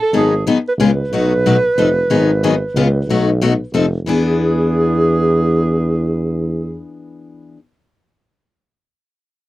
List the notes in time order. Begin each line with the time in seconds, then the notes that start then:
Already playing: A4
0.02 A4
0.12 G#1 D#3 F#3 B3 D#4 G#4
0.17 G#4
0.47 D#3 F#3 B3 D#4 G#4
0.68 B4
0.78 C#2 C#3 G#3 B3 F4 G#4
0.83 B4
1.10 B1 B2 F#3 A3 D#4
1.14 F#4
1.46 B2 F#3 A3 D#4 F#4
1.76 F1 F3 C4 D#4 A4
2.09 G#1 D#3 F#3 B3 D#4 G#4
2.43 D#3 F#3 B3 D#4 G#4
2.74 C#2 C#3 G#3 B3 F4 G#4
3.07 B1 B2 F#3 A3 D#4 F#4
3.41 B2 F#3 A3 D#4 F#4
3.73 F1 F3 C4 D#4 A4
4.05 E2 E3 B3 D4 G#4